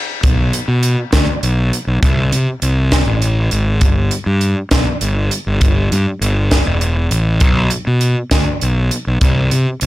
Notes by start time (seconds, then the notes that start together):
0.23 B1, kick, closed hi-hat
0.53 closed hi-hat
0.68 B2
0.83 closed hi-hat
1.12 D2, kick, snare, closed hi-hat
1.43 B1, closed hi-hat
1.73 closed hi-hat
1.87 B1
2.03 C2, kick, closed hi-hat
2.32 C3, closed hi-hat
2.62 C2, closed hi-hat
2.92 kick, snare, closed hi-hat
3.07 A1
3.22 closed hi-hat
3.51 G#1, closed hi-hat
3.81 G1, kick, closed hi-hat
4.11 closed hi-hat
4.26 G2
4.41 closed hi-hat
4.71 B1, kick, snare, closed hi-hat
5.01 G1, closed hi-hat
5.31 closed hi-hat
5.47 G1
5.61 kick, closed hi-hat
5.92 G2, closed hi-hat
6.21 G1, closed hi-hat
6.51 kick, snare, closed hi-hat
6.66 E1
6.81 closed hi-hat
7.11 A1, closed hi-hat
7.40 B1, kick, closed hi-hat
7.70 closed hi-hat
7.87 B2
8.01 closed hi-hat
8.31 D2, kick, snare, closed hi-hat
8.61 B1, closed hi-hat
8.91 closed hi-hat
9.07 B1
9.21 C2, kick, closed hi-hat
9.51 C3, closed hi-hat
9.81 C2, closed hi-hat